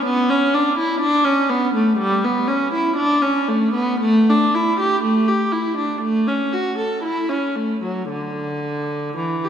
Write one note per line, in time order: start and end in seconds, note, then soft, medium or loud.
0.05 0.29 B3 loud
0.30 0.53 C#4 medium
0.54 0.77 D4 medium
0.78 1.01 E4 medium
1.01 1.24 D4 loud
1.25 1.49 C#4 loud
1.50 1.74 B3 medium
1.75 1.98 A3 medium
1.98 2.22 G3 loud
2.24 2.48 B3 medium
2.48 2.72 C#4 medium
2.73 2.97 E4 medium
2.97 3.22 D4 medium
3.22 3.48 C#4 medium
3.48 3.75 A3 medium
3.74 4.01 B3 medium
4.00 4.27 A3 loud
4.29 4.54 D4 medium
4.55 4.79 E4 medium
4.80 5.03 G4 medium
5.04 5.27 A3 medium
5.28 5.52 G4 medium
5.52 5.76 E4 medium
5.77 6.01 D4 medium
6.01 6.25 A3 medium
6.27 6.52 C#4 medium
6.53 6.77 F#4 medium
6.78 7.03 A4 medium
7.03 7.29 E4 medium
7.29 7.55 C#4 medium
7.56 7.82 A3 medium
7.83 8.09 F#3 medium
8.09 9.15 D3 medium
9.17 9.44 E3 medium
9.45 9.49 G4 medium